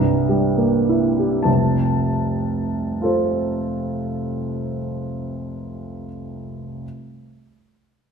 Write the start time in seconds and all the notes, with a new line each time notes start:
Already playing: C2
0.00 G2
0.29 G3
0.57 A#3
0.89 E4
1.19 G4
1.43 F1 C2 A5
3.02 F4 A4 C5